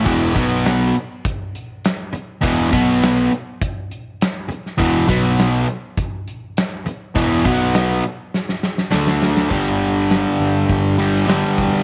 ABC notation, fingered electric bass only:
X:1
M:4/4
L:1/16
Q:1/4=102
K:Bdor
V:1 name="Fingered electric bass" clef=bass
E,,,2 B,,,4 z8 z2 | E,,,2 B,,,4 z8 z2 | E,,,2 B,,,4 z8 z2 | E,,,2 B,,,4 z6 D,,4 |
=G,,,6 G,,,2 G,,,6 E,,, z |]